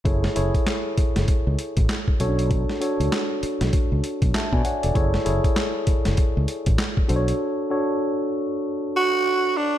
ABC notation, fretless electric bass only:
X:1
M:4/4
L:1/16
Q:"Swing 16ths" 1/4=98
K:F#m
V:1 name="Fretless electric bass" clef=bass
F,,,2 F,,, z4 F,,, z C,, z A,,, z2 B,,,2- | B,,,2 z C,, z3 B,,, z C,, z B,,, z B,, z E,,, | F,,,2 F,,, z4 F,,, z C,, z A,,, z2 B,,,2 | z16 |]